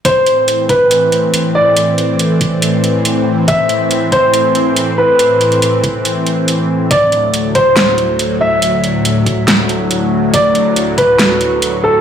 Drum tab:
HH |x-x-x-x-x-x-x---|x-x-x-x-x-x-x---|x-x-x-x-x-x-x---|x-xxx-x-x-x-x---|
SD |----------------|----------------|----------------|----------------|
BD |o-----o---------|------o---------|o-----o---------|------o---------|

HH |x-x-x-x-x-x-x---|x-x-x-x-x-x-x---|x-x-x-x-x-x-x---|
SD |--------o-------|--------o-------|--------o-------|
BD |o-----o---------|------o---------|o-----o---------|